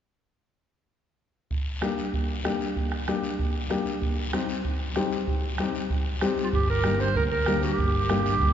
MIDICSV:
0, 0, Header, 1, 6, 480
1, 0, Start_track
1, 0, Key_signature, -2, "minor"
1, 0, Tempo, 313972
1, 2304, Time_signature, 4, 2, 24, 8
1, 13041, End_track
2, 0, Start_track
2, 0, Title_t, "Clarinet"
2, 0, Program_c, 0, 71
2, 9843, Note_on_c, 0, 65, 70
2, 9911, Note_off_c, 0, 65, 0
2, 10006, Note_on_c, 0, 67, 85
2, 10219, Note_off_c, 0, 67, 0
2, 10245, Note_on_c, 0, 70, 88
2, 10705, Note_on_c, 0, 72, 89
2, 10728, Note_off_c, 0, 70, 0
2, 10944, Note_off_c, 0, 72, 0
2, 10954, Note_on_c, 0, 70, 100
2, 11059, Note_off_c, 0, 70, 0
2, 11182, Note_on_c, 0, 70, 94
2, 11629, Note_off_c, 0, 70, 0
2, 11678, Note_on_c, 0, 67, 93
2, 13041, Note_off_c, 0, 67, 0
2, 13041, End_track
3, 0, Start_track
3, 0, Title_t, "Upright piano"
3, 0, Program_c, 1, 0
3, 2773, Note_on_c, 1, 58, 72
3, 2780, Note_on_c, 1, 62, 64
3, 2787, Note_on_c, 1, 67, 80
3, 3116, Note_off_c, 1, 58, 0
3, 3119, Note_off_c, 1, 62, 0
3, 3122, Note_off_c, 1, 67, 0
3, 3733, Note_on_c, 1, 58, 73
3, 3742, Note_on_c, 1, 62, 66
3, 3743, Note_on_c, 1, 67, 84
3, 4076, Note_off_c, 1, 58, 0
3, 4081, Note_off_c, 1, 62, 0
3, 4081, Note_off_c, 1, 67, 0
3, 4706, Note_on_c, 1, 58, 66
3, 4710, Note_on_c, 1, 62, 69
3, 4719, Note_on_c, 1, 67, 84
3, 5043, Note_off_c, 1, 58, 0
3, 5045, Note_off_c, 1, 62, 0
3, 5050, Note_off_c, 1, 67, 0
3, 5654, Note_on_c, 1, 58, 77
3, 5657, Note_on_c, 1, 62, 74
3, 5667, Note_on_c, 1, 67, 84
3, 5997, Note_off_c, 1, 58, 0
3, 5998, Note_off_c, 1, 62, 0
3, 6003, Note_off_c, 1, 67, 0
3, 6618, Note_on_c, 1, 55, 65
3, 6621, Note_on_c, 1, 60, 66
3, 6622, Note_on_c, 1, 63, 67
3, 6626, Note_on_c, 1, 67, 75
3, 6959, Note_off_c, 1, 55, 0
3, 6960, Note_off_c, 1, 60, 0
3, 6961, Note_off_c, 1, 63, 0
3, 6963, Note_off_c, 1, 67, 0
3, 7578, Note_on_c, 1, 55, 83
3, 7583, Note_on_c, 1, 60, 71
3, 7586, Note_on_c, 1, 63, 73
3, 7590, Note_on_c, 1, 67, 91
3, 7918, Note_off_c, 1, 55, 0
3, 7921, Note_off_c, 1, 60, 0
3, 7922, Note_off_c, 1, 63, 0
3, 7924, Note_off_c, 1, 67, 0
3, 8552, Note_on_c, 1, 55, 68
3, 8557, Note_on_c, 1, 60, 62
3, 8560, Note_on_c, 1, 67, 78
3, 8562, Note_on_c, 1, 63, 63
3, 8885, Note_off_c, 1, 55, 0
3, 8888, Note_off_c, 1, 60, 0
3, 8889, Note_off_c, 1, 67, 0
3, 8890, Note_off_c, 1, 63, 0
3, 9499, Note_on_c, 1, 55, 82
3, 9504, Note_on_c, 1, 60, 71
3, 9504, Note_on_c, 1, 63, 70
3, 9509, Note_on_c, 1, 67, 84
3, 9838, Note_off_c, 1, 55, 0
3, 9840, Note_off_c, 1, 60, 0
3, 9840, Note_off_c, 1, 63, 0
3, 9843, Note_off_c, 1, 67, 0
3, 10449, Note_on_c, 1, 58, 61
3, 10455, Note_on_c, 1, 62, 57
3, 10465, Note_on_c, 1, 67, 72
3, 10792, Note_off_c, 1, 58, 0
3, 10795, Note_off_c, 1, 62, 0
3, 10800, Note_off_c, 1, 67, 0
3, 11413, Note_on_c, 1, 58, 77
3, 11425, Note_on_c, 1, 62, 63
3, 11428, Note_on_c, 1, 67, 76
3, 11754, Note_off_c, 1, 58, 0
3, 11760, Note_off_c, 1, 62, 0
3, 11761, Note_off_c, 1, 67, 0
3, 12371, Note_on_c, 1, 58, 80
3, 12378, Note_on_c, 1, 62, 68
3, 12387, Note_on_c, 1, 67, 85
3, 12712, Note_off_c, 1, 58, 0
3, 12716, Note_off_c, 1, 62, 0
3, 12720, Note_off_c, 1, 67, 0
3, 13041, End_track
4, 0, Start_track
4, 0, Title_t, "Fingered electric bass"
4, 0, Program_c, 2, 33
4, 9986, Note_on_c, 2, 31, 94
4, 10936, Note_on_c, 2, 38, 90
4, 10959, Note_off_c, 2, 31, 0
4, 11323, Note_off_c, 2, 38, 0
4, 11418, Note_on_c, 2, 38, 82
4, 11803, Note_off_c, 2, 38, 0
4, 11896, Note_on_c, 2, 31, 87
4, 12860, Note_off_c, 2, 31, 0
4, 12860, Note_on_c, 2, 38, 91
4, 13041, Note_off_c, 2, 38, 0
4, 13041, End_track
5, 0, Start_track
5, 0, Title_t, "Two-headed folk drums"
5, 2304, Note_on_c, 9, 36, 73
5, 2456, Note_off_c, 9, 36, 0
5, 2781, Note_on_c, 9, 37, 73
5, 2933, Note_off_c, 9, 37, 0
5, 3265, Note_on_c, 9, 36, 71
5, 3418, Note_off_c, 9, 36, 0
5, 3746, Note_on_c, 9, 37, 67
5, 3899, Note_off_c, 9, 37, 0
5, 4225, Note_on_c, 9, 36, 68
5, 4377, Note_off_c, 9, 36, 0
5, 4460, Note_on_c, 9, 37, 58
5, 4613, Note_off_c, 9, 37, 0
5, 4707, Note_on_c, 9, 37, 77
5, 4860, Note_off_c, 9, 37, 0
5, 5186, Note_on_c, 9, 36, 75
5, 5338, Note_off_c, 9, 36, 0
5, 5667, Note_on_c, 9, 37, 62
5, 5820, Note_off_c, 9, 37, 0
5, 6144, Note_on_c, 9, 36, 74
5, 6297, Note_off_c, 9, 36, 0
5, 6625, Note_on_c, 9, 37, 75
5, 6778, Note_off_c, 9, 37, 0
5, 7103, Note_on_c, 9, 36, 70
5, 7256, Note_off_c, 9, 36, 0
5, 7579, Note_on_c, 9, 37, 63
5, 7732, Note_off_c, 9, 37, 0
5, 8062, Note_on_c, 9, 36, 77
5, 8215, Note_off_c, 9, 36, 0
5, 8534, Note_on_c, 9, 37, 75
5, 8687, Note_off_c, 9, 37, 0
5, 9021, Note_on_c, 9, 36, 80
5, 9174, Note_off_c, 9, 36, 0
5, 9500, Note_on_c, 9, 37, 73
5, 9653, Note_off_c, 9, 37, 0
5, 9982, Note_on_c, 9, 36, 81
5, 10135, Note_off_c, 9, 36, 0
5, 10453, Note_on_c, 9, 37, 76
5, 10606, Note_off_c, 9, 37, 0
5, 10939, Note_on_c, 9, 36, 81
5, 11092, Note_off_c, 9, 36, 0
5, 11410, Note_on_c, 9, 37, 71
5, 11562, Note_off_c, 9, 37, 0
5, 11897, Note_on_c, 9, 36, 87
5, 12050, Note_off_c, 9, 36, 0
5, 12377, Note_on_c, 9, 37, 79
5, 12529, Note_off_c, 9, 37, 0
5, 12857, Note_on_c, 9, 36, 76
5, 13010, Note_off_c, 9, 36, 0
5, 13041, End_track
6, 0, Start_track
6, 0, Title_t, "Drums"
6, 2305, Note_on_c, 9, 74, 59
6, 2457, Note_off_c, 9, 74, 0
6, 2785, Note_on_c, 9, 63, 69
6, 2793, Note_on_c, 9, 73, 57
6, 2937, Note_off_c, 9, 63, 0
6, 2946, Note_off_c, 9, 73, 0
6, 3029, Note_on_c, 9, 73, 55
6, 3181, Note_off_c, 9, 73, 0
6, 3273, Note_on_c, 9, 74, 61
6, 3426, Note_off_c, 9, 74, 0
6, 3746, Note_on_c, 9, 73, 60
6, 3752, Note_on_c, 9, 63, 69
6, 3899, Note_off_c, 9, 73, 0
6, 3905, Note_off_c, 9, 63, 0
6, 3987, Note_on_c, 9, 73, 57
6, 4140, Note_off_c, 9, 73, 0
6, 4238, Note_on_c, 9, 74, 65
6, 4391, Note_off_c, 9, 74, 0
6, 4711, Note_on_c, 9, 73, 56
6, 4714, Note_on_c, 9, 63, 69
6, 4864, Note_off_c, 9, 73, 0
6, 4867, Note_off_c, 9, 63, 0
6, 4946, Note_on_c, 9, 73, 64
6, 5099, Note_off_c, 9, 73, 0
6, 5188, Note_on_c, 9, 74, 60
6, 5341, Note_off_c, 9, 74, 0
6, 5663, Note_on_c, 9, 73, 65
6, 5679, Note_on_c, 9, 63, 75
6, 5815, Note_off_c, 9, 73, 0
6, 5832, Note_off_c, 9, 63, 0
6, 5898, Note_on_c, 9, 73, 60
6, 6051, Note_off_c, 9, 73, 0
6, 6140, Note_on_c, 9, 74, 68
6, 6293, Note_off_c, 9, 74, 0
6, 6623, Note_on_c, 9, 73, 64
6, 6632, Note_on_c, 9, 63, 74
6, 6776, Note_off_c, 9, 73, 0
6, 6785, Note_off_c, 9, 63, 0
6, 6866, Note_on_c, 9, 73, 67
6, 7019, Note_off_c, 9, 73, 0
6, 7107, Note_on_c, 9, 74, 61
6, 7260, Note_off_c, 9, 74, 0
6, 7580, Note_on_c, 9, 73, 65
6, 7591, Note_on_c, 9, 63, 76
6, 7733, Note_off_c, 9, 73, 0
6, 7744, Note_off_c, 9, 63, 0
6, 7822, Note_on_c, 9, 73, 62
6, 7975, Note_off_c, 9, 73, 0
6, 8062, Note_on_c, 9, 74, 61
6, 8215, Note_off_c, 9, 74, 0
6, 8544, Note_on_c, 9, 73, 59
6, 8548, Note_on_c, 9, 63, 76
6, 8697, Note_off_c, 9, 73, 0
6, 8701, Note_off_c, 9, 63, 0
6, 8790, Note_on_c, 9, 73, 66
6, 8943, Note_off_c, 9, 73, 0
6, 9032, Note_on_c, 9, 74, 60
6, 9185, Note_off_c, 9, 74, 0
6, 9509, Note_on_c, 9, 73, 70
6, 9512, Note_on_c, 9, 63, 77
6, 9662, Note_off_c, 9, 73, 0
6, 9665, Note_off_c, 9, 63, 0
6, 9748, Note_on_c, 9, 73, 62
6, 9901, Note_off_c, 9, 73, 0
6, 9991, Note_on_c, 9, 74, 61
6, 10144, Note_off_c, 9, 74, 0
6, 10463, Note_on_c, 9, 73, 66
6, 10468, Note_on_c, 9, 63, 71
6, 10616, Note_off_c, 9, 73, 0
6, 10621, Note_off_c, 9, 63, 0
6, 10706, Note_on_c, 9, 73, 67
6, 10859, Note_off_c, 9, 73, 0
6, 10950, Note_on_c, 9, 74, 60
6, 11103, Note_off_c, 9, 74, 0
6, 11420, Note_on_c, 9, 73, 68
6, 11433, Note_on_c, 9, 63, 81
6, 11572, Note_off_c, 9, 73, 0
6, 11586, Note_off_c, 9, 63, 0
6, 11661, Note_on_c, 9, 73, 67
6, 11814, Note_off_c, 9, 73, 0
6, 11901, Note_on_c, 9, 74, 66
6, 12054, Note_off_c, 9, 74, 0
6, 12385, Note_on_c, 9, 63, 78
6, 12388, Note_on_c, 9, 73, 58
6, 12538, Note_off_c, 9, 63, 0
6, 12541, Note_off_c, 9, 73, 0
6, 12626, Note_on_c, 9, 73, 69
6, 12779, Note_off_c, 9, 73, 0
6, 12864, Note_on_c, 9, 74, 62
6, 13017, Note_off_c, 9, 74, 0
6, 13041, End_track
0, 0, End_of_file